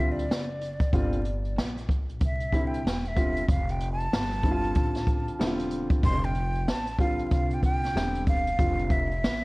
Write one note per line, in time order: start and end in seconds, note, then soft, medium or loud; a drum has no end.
0.00 0.27 D2 loud
0.00 0.22 D3 medium
0.00 0.22 G3 medium
0.00 0.22 C4 medium
0.00 0.23 F4 medium
0.00 0.13 E5 medium
0.12 1.70 D5 medium
0.19 closed hi-hat soft
0.29 0.90 F#1 medium
0.29 snare loud
0.50 closed hi-hat medium
0.61 closed hi-hat medium
0.80 kick loud
0.80 closed hi-hat medium
0.93 1.54 G1 loud
0.93 1.18 D3 medium
0.93 1.18 G3 medium
0.93 1.18 C4 medium
0.93 1.18 F4 medium
0.93 kick loud
0.93 closed hi-hat medium
1.12 closed hi-hat soft
1.25 closed hi-hat medium
1.45 closed hi-hat soft
1.56 2.21 A#1 medium
1.56 snare loud
1.77 closed hi-hat medium
1.89 kick medium
1.89 closed hi-hat medium
2.09 closed hi-hat soft
2.20 2.82 C2 medium
2.20 kick loud
2.20 closed hi-hat medium
2.25 2.69 E5 medium
2.40 closed hi-hat soft
2.52 2.77 D3 medium
2.52 2.78 G3 medium
2.52 2.78 C4 medium
2.52 2.78 E4 medium
2.52 kick medium
2.52 closed hi-hat medium
2.67 3.09 G5 medium
2.74 closed hi-hat medium
2.84 3.45 E1 medium
2.84 snare medium
3.05 3.49 E5 medium
3.05 closed hi-hat medium
3.15 3.41 D3 medium
3.15 3.41 G3 medium
3.15 3.41 C4 medium
3.15 3.41 F4 medium
3.15 kick medium
3.15 closed hi-hat medium
3.36 closed hi-hat medium
3.48 4.09 F1 loud
3.48 3.72 F5 medium
3.48 kick loud
3.48 closed hi-hat loud
3.69 3.92 G5 medium
3.69 closed hi-hat soft
3.80 closed hi-hat medium
3.92 5.47 A5 loud
4.00 closed hi-hat soft
4.12 4.73 G1 medium
4.12 snare loud
4.32 closed hi-hat soft
4.43 5.35 D3 medium
4.43 5.35 G3 medium
4.43 5.35 C4 medium
4.43 4.53 E4 medium
4.43 kick medium
4.43 closed hi-hat medium
4.51 5.39 F4 medium
4.64 closed hi-hat soft
4.75 5.26 A1 medium
4.75 kick loud
4.75 closed hi-hat medium
4.95 snare soft
4.95 closed hi-hat medium
5.07 kick medium
5.07 closed hi-hat medium
5.28 muted upright bass stroke medium
5.28 closed hi-hat soft
5.39 6.01 E1 medium
5.39 6.31 D3 medium
5.39 6.31 G3 medium
5.39 6.31 C4 medium
5.39 5.48 E4 medium
5.39 snare loud
5.47 6.34 F4 medium
5.59 closed hi-hat medium
5.70 closed hi-hat medium
5.90 kick loud
5.90 closed hi-hat medium
6.03 6.64 F1 loud
6.03 6.26 C6 loud
6.03 kick loud
6.03 closed hi-hat medium
6.23 6.71 G5 loud
6.23 closed hi-hat soft
6.35 closed hi-hat medium
6.55 closed hi-hat soft
6.67 7.28 A1 medium
6.67 7.00 A5 loud
6.67 snare loud
6.87 closed hi-hat medium
6.99 7.90 D3 medium
6.99 7.91 G3 medium
6.99 7.91 C4 medium
6.99 7.91 F4 medium
6.99 7.30 F5 medium
6.99 kick medium
6.99 closed hi-hat medium
7.19 closed hi-hat soft
7.31 7.92 C2 medium
7.31 7.56 F5 medium
7.31 kick loud
7.31 closed hi-hat medium
7.51 7.64 G5 medium
7.51 closed hi-hat soft
7.63 8.24 G5 loud
7.63 kick medium
7.63 closed hi-hat medium
7.84 snare soft
7.84 closed hi-hat soft
7.95 8.56 E1 loud
7.95 8.43 D3 medium
7.95 8.43 G3 medium
7.95 8.44 C4 medium
7.95 8.44 G4 medium
7.95 snare loud
8.15 closed hi-hat medium
8.27 8.93 F5 loud
8.27 kick medium
8.27 closed hi-hat medium
8.47 closed hi-hat medium
8.59 9.20 F1 loud
8.59 9.07 D3 medium
8.59 9.07 G3 medium
8.59 9.07 C4 medium
8.59 9.08 F4 medium
8.59 kick loud
8.59 closed hi-hat medium
8.79 closed hi-hat soft
8.90 9.44 E5 medium
8.90 kick medium
8.90 closed hi-hat medium
9.11 closed hi-hat soft
9.23 9.44 A1 medium
9.23 snare loud